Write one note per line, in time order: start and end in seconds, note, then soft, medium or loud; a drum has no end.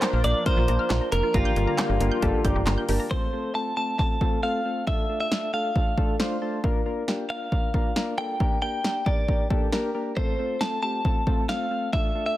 0.00 3.07 F3 medium
0.00 1.33 A#3 medium
0.00 0.19 A#3 medium
0.00 1.31 D4 medium
0.00 0.19 D4 medium
0.00 0.19 F4 medium
0.00 0.19 A#4 medium
0.00 0.24 C5 loud
0.00 0.12 A#5 medium
0.00 snare loud
0.00 clap medium
0.00 closed hi-hat medium
0.13 0.23 A#1 loud
0.13 0.23 F6 medium
0.24 0.34 A#1 loud
0.24 0.41 A#3 medium
0.24 0.41 D4 medium
0.24 0.41 F4 medium
0.24 0.41 A#4 medium
0.24 0.46 D5 loud
0.24 closed hi-hat medium
0.46 0.63 A#3 loud
0.46 0.63 D4 medium
0.46 0.63 F4 medium
0.46 0.63 A#4 loud
0.46 1.08 C5 loud
0.46 0.56 F6 loud
0.46 kick medium
0.46 closed hi-hat medium
0.57 0.67 A#1 loud
0.57 0.67 F4 medium
0.68 0.78 A#1 loud
0.68 0.85 A#3 medium
0.68 0.85 D4 medium
0.68 0.85 F4 medium
0.68 0.85 A#4 medium
0.68 0.78 A#5 medium
0.68 closed hi-hat medium
0.79 0.89 F6 medium
0.90 1.00 A#1 loud
0.90 1.07 A#3 medium
0.90 1.07 D4 medium
0.90 1.00 F4 medium
0.90 1.07 F4 medium
0.90 1.07 A#4 medium
0.90 snare loud
0.90 clap loud
0.90 closed hi-hat medium
1.01 1.11 A#5 medium
1.12 1.22 F1 loud
1.12 1.29 A#3 medium
1.12 1.29 D4 medium
1.12 1.29 F4 medium
1.12 1.35 A#4 loud
1.12 1.29 A#4 medium
1.12 1.22 F6 medium
1.12 closed hi-hat medium
1.23 1.33 F4 medium
1.34 1.44 G1 loud
1.34 3.09 D3 medium
1.34 3.09 G3 medium
1.34 3.09 A#3 medium
1.34 1.52 A#3 loud
1.34 1.52 D4 medium
1.34 3.09 F4 medium
1.34 2.85 F4 medium
1.34 1.52 G4 medium
1.34 1.52 A#4 loud
1.34 1.44 A#5 loud
1.34 kick loud
1.34 closed hi-hat medium
1.45 1.55 G6 medium
1.56 1.66 G1 loud
1.56 1.74 A#3 medium
1.56 1.74 D4 medium
1.56 1.74 G4 medium
1.56 1.74 A#4 medium
1.56 closed hi-hat medium
1.67 1.77 A#5 medium
1.78 1.96 A#3 medium
1.78 1.96 D4 medium
1.78 1.96 G4 medium
1.78 1.96 A#4 medium
1.78 1.88 G6 loud
1.78 snare loud
1.78 clap medium
1.78 closed hi-hat medium
1.89 1.99 G1 loud
1.89 1.99 G4 medium
2.00 2.10 G1 loud
2.00 2.18 A#3 medium
2.00 2.18 D4 medium
2.00 2.18 G4 medium
2.00 2.18 A#4 loud
2.00 closed hi-hat medium
2.12 2.22 G6 medium
2.22 2.32 G1 loud
2.22 2.40 A#3 loud
2.22 2.40 D4 loud
2.22 2.40 G4 loud
2.22 2.33 G4 medium
2.22 2.40 A4 loud
2.22 kick medium
2.22 closed hi-hat medium
2.44 2.54 G1 loud
2.44 2.62 A#3 medium
2.44 2.62 D4 medium
2.44 2.62 G4 medium
2.44 2.62 A#4 loud
2.44 2.65 D5 medium
2.44 2.55 G6 medium
2.44 kick loud
2.44 closed hi-hat medium
2.56 2.65 G1 loud
2.56 2.66 G4 medium
2.67 2.77 G1 loud
2.67 2.84 A#3 medium
2.67 2.84 D4 medium
2.67 2.84 G4 medium
2.67 2.84 A#4 loud
2.67 2.87 F5 medium
2.67 2.77 A#5 medium
2.67 snare loud
2.67 clap loud
2.67 closed hi-hat medium
2.78 2.88 G6 medium
2.89 2.99 G1 loud
2.89 3.06 A#3 medium
2.89 3.06 D4 medium
2.89 2.99 G4 medium
2.89 3.06 G4 medium
2.89 3.06 A#4 loud
2.89 3.09 A5 medium
2.89 open hi-hat medium
3.00 3.10 A#5 medium
3.11 3.28 A3 medium
3.11 3.28 F4 medium
3.11 3.55 C5 medium
3.11 kick loud
3.33 3.50 A3 medium
3.33 3.50 C4 medium
3.33 3.50 F4 medium
3.33 3.50 A4 medium
3.55 3.72 A3 medium
3.55 3.72 C4 medium
3.55 3.72 F4 medium
3.55 3.72 A4 medium
3.55 3.76 A5 loud
3.77 3.94 A3 medium
3.77 3.94 C4 medium
3.77 3.94 F4 medium
3.77 3.94 A4 medium
3.77 3.98 A5 medium
3.99 4.16 A3 medium
3.99 4.16 C4 medium
3.99 4.16 F4 medium
3.99 4.16 A4 medium
3.99 4.43 A5 loud
3.99 kick medium
4.21 4.38 A3 medium
4.21 4.38 C4 medium
4.21 4.38 F4 medium
4.21 4.38 A4 loud
4.21 kick medium
4.43 4.60 A3 medium
4.43 4.60 C4 medium
4.43 4.60 F4 medium
4.43 4.60 A4 loud
4.43 4.87 F5 medium
4.65 4.82 A3 medium
4.65 4.83 C4 medium
4.65 4.83 F4 medium
4.65 4.82 A4 medium
4.87 5.05 A3 medium
4.87 5.05 D4 medium
4.87 5.05 F4 medium
4.87 5.05 A4 medium
4.87 5.18 E5 medium
4.87 kick loud
5.09 5.27 A3 medium
5.09 5.27 D4 medium
5.09 5.27 F4 medium
5.09 5.27 A4 medium
5.20 5.53 E5 medium
5.31 5.49 A3 medium
5.31 5.49 D4 medium
5.31 5.49 F4 medium
5.31 5.49 A4 medium
5.31 snare loud
5.53 5.71 A3 medium
5.53 5.71 D4 medium
5.53 5.71 F4 medium
5.53 5.71 A4 medium
5.53 6.16 F5 medium
5.76 5.93 A3 medium
5.76 5.93 D4 medium
5.76 5.93 F4 medium
5.76 5.93 A4 medium
5.76 kick medium
5.98 6.15 A3 medium
5.98 6.15 D4 medium
5.98 6.15 F4 medium
5.98 6.15 A4 loud
5.98 kick medium
6.20 6.37 A3 loud
6.20 6.37 D4 loud
6.20 6.37 F4 medium
6.20 6.37 C5 loud
6.20 6.40 F5 medium
6.20 snare loud
6.42 6.59 A3 medium
6.42 6.59 D4 medium
6.42 6.59 F4 medium
6.42 6.59 C5 medium
6.42 6.62 A5 medium
6.64 6.81 A#3 loud
6.64 6.81 D4 loud
6.64 6.81 F4 loud
6.64 6.81 A#4 loud
6.64 kick loud
6.86 7.03 A#3 medium
6.86 7.03 D4 medium
6.86 7.03 F4 medium
6.86 7.03 A#4 loud
7.08 7.25 A#3 medium
7.08 7.25 D4 medium
7.08 7.25 F4 medium
7.08 7.25 G4 medium
7.08 snare medium
7.30 7.47 A#3 medium
7.30 7.47 D4 medium
7.30 7.47 F4 medium
7.30 7.47 A#4 medium
7.30 8.18 F5 medium
7.52 7.69 A#3 medium
7.52 7.69 D4 medium
7.52 7.69 F4 medium
7.52 7.69 A#4 medium
7.52 kick medium
7.74 7.91 A#3 medium
7.74 7.91 D4 medium
7.74 7.91 F4 medium
7.74 7.91 A#4 loud
7.74 kick medium
7.96 8.13 A#3 loud
7.96 8.13 D4 medium
7.96 8.13 F4 medium
7.96 8.13 A#4 loud
7.96 snare loud
8.18 8.35 A#3 medium
8.18 8.35 D4 medium
8.18 8.35 F4 medium
8.18 8.35 A4 medium
8.18 8.61 G5 loud
8.40 8.58 A#3 medium
8.40 8.57 D4 medium
8.40 8.58 G4 medium
8.40 8.57 A#4 loud
8.40 kick loud
8.62 8.79 A#3 medium
8.62 8.80 D4 medium
8.62 8.80 G4 medium
8.62 8.79 A#4 medium
8.62 9.08 G5 loud
8.84 9.02 A#3 medium
8.84 9.02 D4 medium
8.84 9.02 G4 medium
8.84 9.02 A#4 medium
8.84 snare loud
9.06 9.24 A#3 medium
9.06 9.24 D4 medium
9.06 9.24 G4 medium
9.06 9.24 A#4 medium
9.06 9.47 D5 medium
9.06 kick loud
9.28 9.46 A#3 medium
9.28 9.46 D4 medium
9.28 9.46 G4 medium
9.28 9.46 A#4 medium
9.28 kick medium
9.50 9.68 A#3 medium
9.50 9.68 D4 medium
9.50 9.68 G4 medium
9.50 9.68 A4 loud
9.50 kick medium
9.72 9.90 A#3 loud
9.72 9.90 D4 medium
9.72 9.90 G4 medium
9.72 9.90 A#4 loud
9.72 snare loud
9.95 10.12 A#3 medium
9.95 10.12 D4 medium
9.95 10.12 G4 medium
9.95 10.12 A#4 medium
10.17 10.34 A3 medium
10.17 10.34 C4 medium
10.17 10.34 F4 medium
10.17 10.34 A4 medium
10.17 10.62 C5 medium
10.17 kick loud
10.39 10.56 A3 medium
10.39 10.56 C4 medium
10.39 10.56 F4 medium
10.39 10.56 A4 medium
10.61 10.78 A3 medium
10.61 10.78 C4 medium
10.61 10.78 F4 medium
10.61 10.78 A4 medium
10.61 10.81 A5 medium
10.61 snare loud
10.83 11.00 A3 medium
10.83 11.00 C4 medium
10.83 11.00 F4 medium
10.83 11.00 G4 medium
10.83 11.49 A5 loud
11.05 11.22 A3 medium
11.05 11.22 C4 medium
11.05 11.22 F4 medium
11.05 11.22 A4 medium
11.05 kick medium
11.27 11.44 A3 medium
11.27 11.44 C4 medium
11.27 11.44 F4 medium
11.27 11.44 A4 loud
11.27 kick medium
11.49 11.66 A3 medium
11.49 11.66 C4 medium
11.49 11.66 F4 medium
11.49 11.66 A4 loud
11.49 11.93 F5 medium
11.49 snare loud
11.71 11.88 A3 medium
11.71 11.88 C4 medium
11.71 11.88 F4 medium
11.71 11.88 A4 medium
11.93 12.10 A3 medium
11.93 12.10 D4 medium
11.93 12.10 F4 medium
11.93 12.10 A4 loud
11.93 12.25 E5 medium
11.93 kick loud
12.15 12.32 A3 medium
12.15 12.32 D4 medium
12.15 12.32 F4 medium
12.15 12.32 A4 medium
12.26 12.37 E5 medium